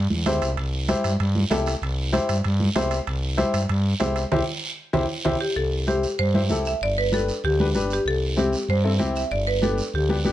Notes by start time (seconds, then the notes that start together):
0.10 E2, high conga
0.26 D2 E4 G4 C5, high conga, high timbale, low timbale, short guiro
0.42 C2, high timbale, short guiro
0.57 C2, high timbale, long guiro
0.88 E4 G4 C5, high conga, high timbale, short guiro
1.04 G2, high timbale, short guiro
1.20 G2, high timbale, long guiro
1.35 high conga
1.50 C2 E4 G4 A4, high conga, high timbale, low timbale, short guiro
1.66 high timbale, short guiro
1.82 C2, high timbale, long guiro
2.13 E4 G4 C5, high conga, high timbale, short guiro
2.29 G2, high timbale, short guiro
2.44 G2, high timbale, long guiro
2.60 high conga
2.75 C2 E4 G4 C5, high conga, high timbale, low timbale, short guiro
2.91 high timbale, short guiro
3.07 C2, high timbale, long guiro
3.37 E4 G4 C5, high conga, high timbale, short guiro
3.53 G2, high timbale, short guiro
3.69 G2, high timbale, long guiro
4.00 C2 E4 G4 C5, high conga, high timbale, low timbale, short guiro
4.16 high timbale, short guiro
4.32 C2 E4 G4 C5, low conga, high timbale, long guiro
4.93 C2 E4 G4 C5, low conga, high timbale, long guiro
5.25 C2 E4 G4 C5, low conga, high timbale, long guiro
5.41 G4
5.56 C2 A4, long guiro
5.87 E4 G4 C5, high conga, short guiro
6.03 short guiro
6.18 G2 C5, long guiro
6.34 E4 G4 C5, high conga
6.50 C2 E4 G4 A4, high conga, short guiro
6.65 E5, short guiro
6.81 G1 D5, long guiro
6.98 B4
7.12 D4 G4 A4 B4, high conga, short guiro
7.28 short guiro
7.44 D2 G4, long guiro
7.59 D4 G4 B4, high conga
7.74 G1 D4 G4 B4, high conga, short guiro
7.90 G4, short guiro
8.05 C2 A4, long guiro
8.37 C4 E4 G4, high conga, short guiro
8.53 short guiro
8.68 G2 C5, long guiro
8.84 C4 E4 A4
8.99 C2 C4 E4 G4, high conga, short guiro
9.16 E5, short guiro
9.31 G1 D5, long guiro
9.47 B4
9.62 B3 D4 G4 A4, high conga, short guiro
9.78 short guiro
9.93 D2 G4, long guiro
10.09 B3 D4 G4, high conga
10.24 G1 B3 D4 G4, high conga, short guiro